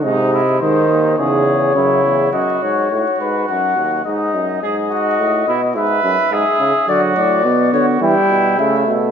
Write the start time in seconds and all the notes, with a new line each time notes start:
0.04 G#2 C3 D#4 D#5
0.33 E4
0.60 G#2 D#3 D#4 C5
0.89 D#2
1.18 E2 C#3 G#4 C#5
1.75 F#2 C#3 E4
2.04 E2
2.32 F#2 F#4 D#5
2.62 G#2 C#5
2.91 A2 F#4
3.20 G#2 B4
3.49 F#2 F#5
3.76 D#2
4.05 G#2 D#4 D#5
4.34 F#2
4.62 G#2 G#4 D#5
4.91 F#4
5.19 A2
5.47 B2 E4
5.75 G#2 B4 E5
6.03 F#2
6.31 G#2 G#4 E5
6.59 C#3
6.88 D3 F#3 F#4 D5
7.16 A2 D5
7.44 B2 B3 F#4
7.73 D3 C#5
8.01 E3 G3 E4 G5
8.29 B2
8.58 C#3 A3 E5
8.87 B2